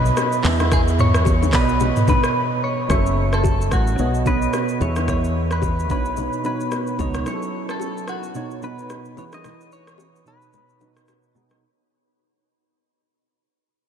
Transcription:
Already playing: tine electric piano B2 B3 C#5 D#5, clean electric guitar B4
0.06 shaker
0.17 cross-stick, high bongo, shaker
0.32 shaker
0.43 fingered electric bass E2, tine electric piano E3 B3 G#4 E5, clap, open hi-hat, low conga, shaker
0.60 cross-stick, low bongo, shaker
0.72 clean electric guitar G#4, kick, cross-stick, low conga, shaker
0.88 shaker
0.99 clean electric guitar C#5, mid tom, shaker
1.14 cross-stick, shaker
1.25 kick, high bongo, shaker
1.42 low bongo, shaker
1.52 fingered electric bass B1, tine electric piano B2 B3 C#5 D5, clean electric guitar B4, kick, cross-stick, clap, open hi-hat, shaker
1.61 tine electric piano D#5
1.69 shaker
1.80 high bongo, low conga, shaker
1.96 mid tom, shaker
2.08 clean electric guitar B4, kick, low bongo, shaker
2.24 cross-stick, shaker
2.64 clean electric guitar C#5
2.88 fingered electric bass F#1, tine electric piano F#3 C#4 A4 E5, clean electric guitar C#5, kick, cross-stick, low conga, shaker
3.06 shaker
3.33 clean electric guitar A4, cross-stick, shaker
3.44 kick, high bongo, shaker
3.61 shaker
3.71 fingered electric bass A1, clean electric guitar F#4, kick, cross-stick, shaker
3.87 shaker
3.98 fingered electric bass B1, tine electric piano B2 B3 C#5 D#5, low conga, shaker
4.14 shaker
4.25 tine electric piano B2 B3 C#5 D#5, clean electric guitar B4, kick, low bongo, shaker
4.42 shaker
4.53 cross-stick, high bongo, shaker
4.69 shaker
4.79 fingered electric bass E2, tine electric piano E3 B3 G#4 E5, clean electric guitar C#5, high bongo, low conga, shaker
4.96 cross-stick, low bongo, shaker
5.08 clean electric guitar C#5, kick, cross-stick, low conga, shaker
5.24 shaker
5.51 clean electric guitar B4, cross-stick, shaker
5.62 kick, high bongo, shaker
5.79 shaker
5.89 fingered electric bass B1, tine electric piano B2 B3 D4 C#5, clean electric guitar B4, kick, shaker
5.97 tine electric piano D#4
6.05 shaker
6.17 low conga, shaker
6.33 shaker
6.43 tine electric piano B2 B3 D#4 C#5, clean electric guitar B4, low bongo, shaker
6.60 shaker
6.72 cross-stick, high bongo, shaker
6.87 shaker
6.98 fingered electric bass C#2, tine electric piano B2 B3 D#4 D#5, clean electric guitar C#5, kick, high bongo, low conga, shaker
7.14 cross-stick, low bongo, shaker
7.25 tine electric piano F#3 C#4 E4 G#4, clean electric guitar C#5, cross-stick, low conga, shaker
7.34 tine electric piano A4
7.42 shaker
7.69 clean electric guitar A4, cross-stick, shaker
7.80 high bongo, shaker
7.97 shaker
8.08 clean electric guitar F#4, cross-stick, shaker
8.23 shaker
8.34 tine electric piano B2 B3 D#4 C#5, low conga, shaker
8.51 shaker
8.61 tine electric piano B2 B3 D#4 B4, clean electric guitar B4, low bongo, shaker
8.79 shaker
8.90 cross-stick, high bongo, shaker
9.05 shaker
9.16 tine electric piano E3 E4 G#4 B4, clean electric guitar C#5, high bongo, low conga, shaker
9.32 clean electric guitar D#5, cross-stick, low bongo, shaker
9.44 cross-stick, low conga, shaker
9.61 shaker
9.72 clean electric guitar C#5, shaker
9.87 cross-stick, shaker
9.98 high bongo, shaker
10.16 shaker
10.25 tine electric piano B2 B3 D#4 C#5, clean electric guitar B4, shaker
10.42 shaker
10.53 low conga, shaker
10.69 shaker
10.80 tine electric piano B2 B3 D#4 B4, low bongo, shaker
10.97 cross-stick, shaker
11.08 cross-stick, high bongo, shaker
11.23 shaker
11.34 tine electric piano B2 B3 D#4 G#4, high bongo, low conga, shaker
11.50 cross-stick, low bongo, shaker

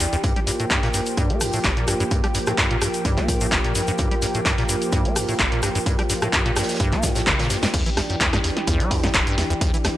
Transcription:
Already playing: analog synth pad E3 D4 G4
0.00 acid bass E2, closed hi-hat, open hi-hat, shaker
0.13 acid bass E2, closed hi-hat, shaker
0.23 acid bass G2, analog synth pad F3 A#3, kick, closed hi-hat, shaker
0.36 acid bass G3, closed hi-hat
0.47 acid bass G2, snare, closed hi-hat, open hi-hat, shaker
0.60 acid bass A2, closed hi-hat, shaker
0.70 acid bass G2, kick, snare, clap, closed hi-hat, shaker
0.83 acid bass A#2, snare, closed hi-hat
0.94 acid bass G2, closed hi-hat, open hi-hat, shaker
1.06 closed hi-hat, shaker
1.17 acid bass G2, kick, closed hi-hat, shaker
1.30 acid bass A#3, closed hi-hat
1.41 acid bass G2, cross-stick, open hi-hat, shaker
1.53 acid bass A2, closed hi-hat, shaker
1.64 acid bass G1, kick, snare, clap, closed hi-hat, shaker
1.77 acid bass A#2, closed hi-hat
1.88 acid bass G2, cross-stick, closed hi-hat, open hi-hat, shaker
2.00 acid bass G2, closed hi-hat, shaker
2.11 acid bass G2, kick, closed hi-hat, shaker
2.23 acid bass G3, cross-stick, closed hi-hat
2.34 acid bass G2, snare, closed hi-hat, open hi-hat, shaker
2.46 acid bass A2, cross-stick, closed hi-hat, shaker
2.58 acid bass G2, kick, snare, clap, closed hi-hat, shaker
2.71 acid bass A#2, closed hi-hat
2.82 acid bass G2, cross-stick, closed hi-hat, open hi-hat, shaker
2.94 closed hi-hat, shaker
3.05 acid bass G2, kick, closed hi-hat, shaker
3.17 acid bass A#3, kick, clap, closed hi-hat
3.28 acid bass G2, kick, closed hi-hat, open hi-hat, shaker
3.41 acid bass A2, closed hi-hat, shaker
3.51 acid bass G1, kick, snare, clap, closed hi-hat, shaker
3.64 acid bass A#2, closed hi-hat
3.75 acid bass G2, closed hi-hat, open hi-hat, shaker
3.87 acid bass G2, closed hi-hat, shaker
3.98 acid bass G2, kick, closed hi-hat, shaker
4.11 acid bass G3, closed hi-hat
4.22 acid bass G2, snare, closed hi-hat, open hi-hat, shaker
4.34 acid bass A2, closed hi-hat, shaker
4.45 acid bass G2, kick, snare, clap, closed hi-hat, shaker
4.58 acid bass A#2, snare, closed hi-hat
4.69 acid bass G2, closed hi-hat, open hi-hat, shaker
4.82 closed hi-hat, shaker
4.92 acid bass G2, kick, closed hi-hat, shaker
5.05 acid bass A#3, closed hi-hat
5.15 acid bass G2, cross-stick, open hi-hat, shaker
5.29 acid bass A2, closed hi-hat, shaker
5.39 acid bass G1, kick, snare, clap, closed hi-hat, shaker
5.52 acid bass A#2, closed hi-hat
5.63 acid bass G2, cross-stick, closed hi-hat, open hi-hat, shaker
5.75 acid bass G2, closed hi-hat, shaker
5.86 acid bass G2, kick, closed hi-hat, shaker
5.99 acid bass G3, cross-stick, closed hi-hat
6.10 acid bass G2, snare, closed hi-hat, open hi-hat, shaker
6.22 acid bass A2, cross-stick, closed hi-hat, shaker
6.32 acid bass G2, kick, snare, clap, closed hi-hat, shaker
6.46 acid bass A#2, closed hi-hat
6.56 acid bass G2, cross-stick, snare, closed hi-hat, open hi-hat, shaker
6.63 snare, closed hi-hat
6.69 snare, closed hi-hat, shaker
6.74 snare, closed hi-hat
6.80 acid bass G2, kick, closed hi-hat, shaker
6.92 acid bass A#3, kick, clap, closed hi-hat
7.03 acid bass G2, kick, snare, closed hi-hat, open hi-hat, shaker
7.15 acid bass A2, snare, closed hi-hat, shaker
7.27 acid bass G1, kick, snare, clap, closed hi-hat, high tom, shaker
7.39 acid bass A#2, snare, closed hi-hat, high tom
7.50 acid bass G2, snare, closed hi-hat, open hi-hat, shaker
7.63 acid bass G2, snare, closed hi-hat, shaker
7.74 acid bass E2, analog synth pad E3 D4 G4, kick, closed hi-hat, crash
7.86 acid bass E3, closed hi-hat
7.97 acid bass E2, cross-stick, snare, closed hi-hat, open hi-hat
8.10 acid bass F#2, closed hi-hat
8.21 acid bass E2, kick, snare, clap, closed hi-hat
8.33 acid bass G2, cross-stick, snare, closed hi-hat
8.44 acid bass E2, closed hi-hat, open hi-hat
8.57 snare, closed hi-hat
8.67 acid bass E2, kick, closed hi-hat
8.80 acid bass G3, closed hi-hat
8.91 acid bass E2, kick, open hi-hat
9.03 acid bass F#2, snare, closed hi-hat
9.14 acid bass E1, kick, snare, clap, closed hi-hat
9.27 acid bass G2, closed hi-hat
9.38 acid bass E2, snare, closed hi-hat, open hi-hat
9.50 acid bass E2, closed hi-hat
9.61 acid bass E2, kick, closed hi-hat
9.74 acid bass E3, closed hi-hat
9.84 acid bass E2, cross-stick, snare, closed hi-hat, open hi-hat

